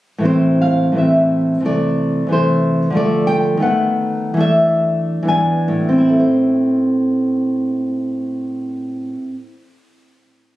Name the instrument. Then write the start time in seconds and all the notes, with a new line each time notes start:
nylon-string guitar
0.18 A2 E3
0.23 C4 C5
0.61 F5
0.92 A2 E3
0.96 C4 E5
1.61 C3 E3
1.65 A3 D5
2.27 C3 E3 A3
2.32 C5
2.90 D3 F3
2.95 A3 D5
3.27 G5
3.57 D#3 A3
3.62 B3 F#5
4.34 E3 A3
4.39 D4 E5
5.23 E3 B3
5.27 D4 G#5
5.68 A2
5.89 C4
5.98 E4
6.09 A4
6.20 C5